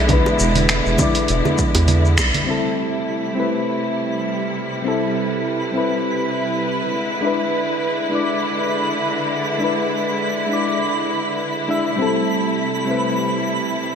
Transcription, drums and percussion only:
0.09 kick loud
0.09 closed hi-hat soft
0.09 low conga medium
0.09 shaker soft
0.26 high bongo medium
0.26 shaker soft
0.39 shaker medium
0.56 closed hi-hat medium
0.56 low conga medium
0.56 shaker soft
0.69 finger snap medium
0.69 closed hi-hat soft
0.69 high bongo medium
0.69 shaker soft
0.86 shaker soft
0.98 kick loud
0.98 high bongo medium
0.98 low conga medium
0.98 shaker medium
1.15 closed hi-hat medium
1.15 shaker soft
1.28 closed hi-hat soft
1.28 shaker soft
1.45 high bongo medium
1.45 low conga medium
1.45 shaker soft
1.58 kick loud
1.58 shaker medium
1.75 closed hi-hat medium
1.75 high bongo medium
1.75 shaker soft
1.88 closed hi-hat soft
1.88 low conga medium
1.88 shaker soft
2.05 shaker soft
2.18 finger snap medium
2.18 kick medium
2.18 high bongo medium
2.18 shaker medium
2.34 closed hi-hat medium
2.34 low conga medium
2.34 shaker soft
2.48 shaker soft
2.64 shaker soft
2.77 shaker medium
2.94 shaker soft
3.07 shaker soft
3.24 shaker soft
3.37 shaker medium
3.53 shaker soft
3.66 shaker soft
3.96 shaker medium
4.55 shaker medium
5.14 shaker medium
5.74 shaker medium
6.04 shaker soft
6.34 shaker medium
6.50 shaker soft
6.93 shaker medium
7.10 shaker soft
7.40 shaker soft
7.52 shaker medium
7.69 shaker soft
7.83 shaker soft
7.99 shaker soft
8.12 shaker medium
8.29 shaker soft
8.41 shaker soft
8.71 shaker medium
8.88 shaker soft
9.01 shaker soft
9.18 shaker soft
9.30 shaker medium
9.89 shaker medium
10.06 shaker soft
10.19 shaker soft
10.36 shaker soft
10.48 shaker medium
10.65 shaker soft
10.78 shaker soft
10.95 shaker soft
11.08 shaker medium
11.38 shaker soft
11.68 shaker medium
11.85 shaker soft
12.27 shaker medium
12.57 shaker soft
12.73 shaker soft
12.87 shaker medium
13.03 shaker soft
13.17 shaker soft
13.46 shaker medium
13.63 shaker soft
13.76 shaker soft

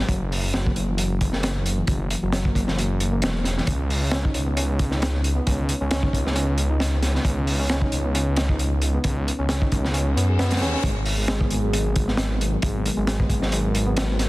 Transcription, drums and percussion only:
0.09 kick loud
0.09 closed hi-hat medium
0.32 open hi-hat medium
0.54 snare loud
0.54 closed hi-hat medium
0.67 kick medium
0.76 closed hi-hat medium
0.98 closed hi-hat medium
1.21 kick loud
1.21 closed hi-hat medium
1.33 snare soft
1.43 snare loud
1.43 closed hi-hat medium
1.66 closed hi-hat medium
1.87 kick loud
1.87 closed hi-hat medium
2.10 closed hi-hat medium
2.33 snare loud
2.33 closed hi-hat medium
2.45 kick loud
2.55 kick medium
2.55 closed hi-hat medium
2.68 snare soft
2.78 closed hi-hat medium
3.00 closed hi-hat medium
3.22 snare loud
3.22 closed hi-hat medium
3.44 snare soft
3.44 closed hi-hat medium
3.58 snare soft
3.67 kick loud
3.67 closed hi-hat medium
3.90 open hi-hat medium
4.11 snare loud
4.11 closed hi-hat medium
4.25 kick medium
4.34 closed hi-hat medium
4.57 closed hi-hat medium
4.79 kick medium
4.79 closed hi-hat medium
4.91 snare soft
5.02 snare loud
5.02 closed hi-hat medium
5.24 closed hi-hat medium
5.47 kick loud
5.47 closed hi-hat medium
5.69 closed hi-hat medium
5.91 snare loud
5.91 closed hi-hat medium
6.03 kick loud
6.13 kick medium
6.13 closed hi-hat medium
6.27 snare soft
6.36 closed hi-hat medium
6.58 closed hi-hat medium
6.80 snare loud
6.80 closed hi-hat medium
7.02 snare soft
7.02 closed hi-hat medium
7.15 snare soft
7.25 kick loud
7.25 closed hi-hat medium
7.47 open hi-hat medium
7.69 snare loud
7.69 closed hi-hat medium
7.82 kick medium
7.92 closed hi-hat medium
8.15 closed hi-hat medium
8.36 snare loud
8.36 closed hi-hat medium
8.49 kick medium
8.59 closed hi-hat medium
8.82 closed hi-hat medium
9.04 kick loud
9.04 closed hi-hat medium
9.28 closed hi-hat medium
9.49 snare loud
9.49 closed hi-hat medium
9.62 kick loud
9.72 kick medium
9.72 closed hi-hat medium
9.85 snare soft
9.94 closed hi-hat medium
10.17 closed hi-hat medium
10.39 snare loud
10.39 closed hi-hat medium
10.51 snare medium
10.51 closed hi-hat medium
10.57 snare medium
10.57 closed hi-hat medium
10.62 snare medium
10.62 closed hi-hat medium
10.74 snare soft
10.84 kick loud
10.84 closed hi-hat medium
11.06 open hi-hat medium
11.28 snare loud
11.28 closed hi-hat medium
11.41 kick medium
11.50 closed hi-hat medium
11.73 closed hi-hat medium
11.96 kick loud
11.96 closed hi-hat medium
12.08 snare soft
12.17 snare loud
12.17 closed hi-hat medium
12.41 closed hi-hat medium
12.62 kick loud
12.62 closed hi-hat medium
12.86 closed hi-hat medium
13.07 snare loud
13.07 closed hi-hat medium
13.20 kick medium
13.29 kick medium
13.29 closed hi-hat medium
13.42 snare medium
13.52 closed hi-hat medium
13.75 closed hi-hat medium
13.96 snare loud
13.96 closed hi-hat medium
14.19 snare soft
14.19 closed hi-hat medium

